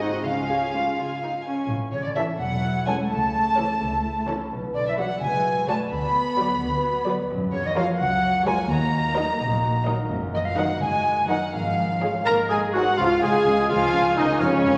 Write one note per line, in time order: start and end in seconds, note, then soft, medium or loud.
0.00 0.14 G#2 soft
0.00 0.18 G#2 soft
0.00 0.25 C4 soft
0.00 0.20 D#4 soft
0.00 0.11 D#4 soft
0.00 0.23 F#4 soft
0.00 0.25 F#4 soft
0.00 0.20 G#4 soft
0.00 0.23 D#5 soft
0.00 0.24 F#5 soft
0.08 1.63 C#3 soft
0.12 1.93 C#4 soft
0.16 1.67 F4 soft
0.21 0.70 C#2 soft
0.21 0.86 C#3 soft
0.21 1.69 G#4 soft
0.21 0.47 F5 soft
0.25 0.48 G#3 soft
0.25 0.96 C#4 soft
0.25 0.48 F4 soft
0.25 1.34 F5 soft
0.48 0.73 C#4 soft
0.48 0.73 G#4 soft
0.48 0.73 G#5 soft
0.72 0.97 G#3 soft
0.72 0.98 F4 soft
0.72 0.97 F5 soft
0.98 1.58 C#3 soft
0.98 1.07 F4 soft
0.98 1.22 G#5 soft
1.22 1.31 D#4 soft
1.22 1.44 F5 soft
1.45 1.70 C#4 soft
1.45 1.69 G#5 soft
1.70 2.26 A1 medium
1.70 3.13 A2 soft
1.93 1.98 C#3 medium
1.93 2.87 C#4 soft
1.93 2.04 C#5 soft
1.93 2.04 C#5 medium
2.04 2.17 D3 soft
2.04 2.09 D5 soft
2.04 2.15 D5 medium
2.16 2.25 E3 soft
2.16 2.35 E3 soft
2.16 2.35 C#4 soft
2.16 2.63 E4 soft
2.16 2.34 A4 soft
2.16 2.34 C#5 medium
2.16 2.24 E5 medium
2.16 2.22 E5 medium
2.39 2.96 E1 medium
2.39 2.86 F#3 medium
2.39 3.80 A4 soft
2.39 2.85 F#5 medium
2.39 2.86 F#5 medium
2.65 3.57 E4 soft
2.87 3.05 E3 soft
2.87 3.11 G#3 medium
2.87 3.34 C#4 soft
2.87 3.05 C#4 soft
2.87 3.05 A4 medium
2.87 3.05 C#5 soft
2.87 2.95 G#5 medium
2.87 2.94 G#5 medium
3.10 3.67 C#2 medium
3.10 4.54 C#3 soft
3.10 4.26 A3 medium
3.10 4.25 A5 medium
3.10 4.26 A5 medium
3.35 4.27 C#4 soft
3.58 3.76 E3 soft
3.58 3.76 C#4 medium
3.58 4.04 E4 soft
3.58 3.75 A4 medium
3.58 3.75 C#5 medium
3.81 4.37 C#2 medium
3.81 4.53 A4 soft
4.05 4.53 E4 soft
4.28 4.45 E3 medium
4.28 4.45 C#4 medium
4.28 4.53 C#4 soft
4.28 4.45 A4 medium
4.28 4.45 C#5 soft
4.51 5.07 B1 medium
4.51 5.93 B2 soft
4.74 4.85 D3 medium
4.74 5.67 D4 soft
4.74 4.85 D5 medium
4.74 4.86 D5 medium
4.86 4.91 E3 medium
4.86 4.91 E5 medium
4.86 4.98 E5 medium
4.97 5.15 F#3 medium
4.97 5.06 F#3 medium
4.97 5.15 F#4 medium
4.97 5.44 F#4 soft
4.97 5.15 B4 medium
4.97 5.15 D5 medium
4.97 5.05 F#5 medium
4.97 5.22 F#5 medium
5.21 5.77 F#1 medium
5.21 5.67 G#3 medium
5.21 6.59 B4 soft
5.21 5.67 G#5 medium
5.45 6.37 F#4 soft
5.68 5.86 F#3 medium
5.68 5.76 A3 medium
5.68 7.32 D4 soft
5.68 5.85 F#4 medium
5.68 5.86 B4 medium
5.68 5.86 D5 medium
5.68 5.75 A5 medium
5.68 5.77 A5 medium
5.91 6.47 D2 medium
5.91 7.32 D3 medium
5.91 7.05 B3 medium
5.91 7.05 B5 medium
6.15 7.06 B3 soft
6.37 6.55 F#3 medium
6.37 6.55 F#4 medium
6.37 6.83 F#4 soft
6.37 6.56 B4 medium
6.37 6.55 D5 medium
6.60 7.15 D2 medium
6.60 7.32 B4 medium
6.84 7.75 F#4 soft
7.07 7.24 F#3 medium
7.07 7.32 B3 soft
7.07 7.24 F#4 medium
7.07 7.25 B4 medium
7.07 7.25 D5 medium
7.30 8.72 F#2 medium
7.30 7.86 F#2 medium
7.52 7.58 C#3 medium
7.52 8.46 A#3 soft
7.52 7.64 C#5 medium
7.52 7.68 C#5 medium
7.65 7.76 D#3 medium
7.65 7.76 D#5 medium
7.75 7.99 F3 medium
7.75 7.94 F#3 medium
7.75 7.94 F4 medium
7.75 8.22 F#4 soft
7.75 7.94 A#4 medium
7.75 7.94 C#5 medium
7.75 7.83 F5 medium
7.75 7.86 F5 medium
7.99 8.55 C#2 medium
7.99 8.45 F#3 medium
7.99 8.72 C#5 medium
7.99 8.45 F#5 medium
8.23 9.16 F#4 soft
8.45 8.64 F#3 medium
8.45 8.53 G#3 medium
8.45 8.92 A#3 medium
8.45 8.64 F4 medium
8.45 8.64 A#4 medium
8.45 8.64 C#5 medium
8.45 8.69 G#5 medium
8.45 8.53 G#5 medium
8.69 9.25 D#2 medium
8.69 10.13 D#3 medium
8.69 9.84 A#3 medium
8.69 9.84 A#5 medium
8.69 9.86 A#5 medium
8.93 9.86 A#3 soft
9.16 9.34 F#3 medium
9.16 9.34 D#4 medium
9.16 9.63 F#4 medium
9.16 9.34 A#4 medium
9.16 9.34 D#5 medium
9.40 9.96 A#1 medium
9.40 10.80 D#5 soft
9.64 10.56 F#4 soft
9.86 10.05 F#3 medium
9.86 10.33 A#3 soft
9.86 10.05 D#4 medium
9.86 10.04 A#4 medium
9.86 10.04 D#5 medium
10.11 10.67 F#1 medium
10.11 11.56 F#2 soft
10.34 10.39 D#3 medium
10.34 11.28 A#3 soft
10.34 10.47 D#5 medium
10.34 10.40 D#5 medium
10.45 10.50 F3 medium
10.45 10.56 F5 medium
10.45 10.58 F5 medium
10.57 10.76 D#3 medium
10.57 10.65 F#3 medium
10.57 10.76 D#4 medium
10.57 11.04 F#4 soft
10.57 10.75 A#4 medium
10.57 10.76 D#5 medium
10.57 10.63 F#5 medium
10.57 10.81 F#5 medium
10.80 11.39 F#1 medium
10.80 11.28 G#3 medium
10.80 11.56 D#5 soft
10.80 11.28 G#5 medium
10.80 11.29 G#5 medium
11.05 11.55 F#4 soft
11.28 11.47 D#3 medium
11.28 11.36 F#3 medium
11.28 11.56 A#3 soft
11.28 11.47 D#4 medium
11.28 11.48 A#4 medium
11.28 11.48 D#5 soft
11.28 11.35 F#5 medium
11.28 11.54 F#5 medium
11.53 12.12 G#1 medium
11.53 12.26 G#2 soft
11.53 12.25 F3 medium
11.53 12.25 F5 medium
11.77 12.49 G#3 soft
12.01 12.20 G#3 medium
12.01 12.28 C#4 soft
12.01 12.20 F4 medium
12.01 12.20 G#4 soft
12.01 12.20 C#5 medium
12.01 12.28 C#5 soft
12.25 12.85 G#1 medium
12.25 13.01 G#2 soft
12.25 12.37 A#3 medium
12.25 12.36 A#4 medium
12.25 12.48 A#4 medium
12.25 12.50 A#4 medium
12.25 12.33 A#5 medium
12.48 12.60 G#3 medium
12.48 13.21 G#3 soft
12.48 12.60 G#4 medium
12.48 12.75 G#4 medium
12.48 12.62 G#4 medium
12.48 12.58 G#5 medium
12.73 12.85 F#3 medium
12.73 12.93 G#3 soft
12.73 13.01 D#4 soft
12.73 12.93 D#4 medium
12.73 12.84 F#4 medium
12.73 12.99 F#4 medium
12.73 12.93 G#4 soft
12.73 12.93 C5 soft
12.73 13.01 C5 soft
12.73 12.99 F#5 medium
12.98 13.08 C#2 medium
12.98 13.07 C#2 medium
12.98 13.07 C#3 medium
12.98 14.43 C#3 medium
12.98 13.10 F3 medium
12.98 13.09 F4 medium
12.98 13.22 F4 medium
12.98 13.66 F5 medium
12.98 13.23 F5 medium
13.12 14.74 C#4 soft
13.22 13.31 C#2 medium
13.22 13.32 C#2 medium
13.22 13.30 C#3 medium
13.22 14.28 G#3 soft
13.22 13.69 G#3 medium
13.22 13.69 G#4 medium
13.22 13.70 G#4 medium
13.22 13.71 G#4 medium
13.22 13.70 G#5 medium
13.35 14.17 F4 soft
13.45 13.54 C#2 medium
13.45 13.56 C#2 medium
13.45 13.53 C#3 medium
13.45 14.78 C#5 soft
13.58 14.05 G#4 soft
13.69 13.78 C#2 medium
13.69 13.80 C#2 medium
13.69 13.77 C#3 medium
13.69 14.16 F3 medium
13.69 14.19 F4 medium
13.69 14.16 F4 medium
13.69 13.93 F5 medium
13.69 14.16 F5 medium
13.69 14.39 G#5 medium
13.82 14.78 C#6 soft
13.93 14.01 C#2 medium
13.93 14.03 C#2 medium
13.93 14.01 C#3 medium
13.93 14.78 F5 soft
14.07 14.78 G#4 soft
14.16 14.25 C#2 medium
14.16 14.27 C#2 medium
14.16 14.24 C#3 medium
14.16 14.40 D#3 medium
14.16 14.27 D#4 medium
14.16 14.40 D#4 medium
14.16 14.78 F4 soft
14.16 14.40 D#5 medium
14.30 14.63 G#3 soft
14.39 14.48 F1 medium
14.39 14.51 F1 medium
14.39 14.47 F2 medium
14.39 14.78 F2 medium
14.39 14.78 C#3 medium
14.39 14.78 C#4 medium
14.39 14.78 C#5 medium
14.39 14.48 F5 medium
14.53 14.78 F3 soft
14.63 14.73 F1 medium
14.63 14.74 F1 medium
14.63 14.71 F2 medium
14.63 14.78 G#3 soft
14.63 14.78 G#5 medium